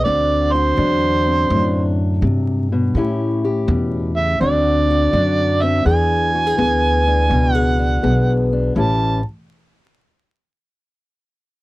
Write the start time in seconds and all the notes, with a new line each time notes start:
0.04 D2 D3 C4 D4 F#4 D5
0.52 F#4 C5
0.77 E2 F#3 D4
1.27 C4
1.50 F#2 A2 D4
2.22 G2 C3
2.72 B2
2.95 A2 C#4 E4 G4
3.45 G4
3.68 E2 B2
4.17 C#3 E5
4.40 D2 D3 C4 D4 F#4 D5
4.90 F#4
5.13 F#2 F#3 D4
5.62 C4 E5
5.85 E2 E3 D4 G#4 G#5
6.35 F#4
6.47 G#4
6.58 D2 B3 G#4
7.07 D4
7.29 C#2 B2 F#4
7.54 G#4 F#5
7.79 D4
8.03 B1 B3 G#4
8.53 D4
8.75 A1 A2 E3 C#4 E4 G4 A5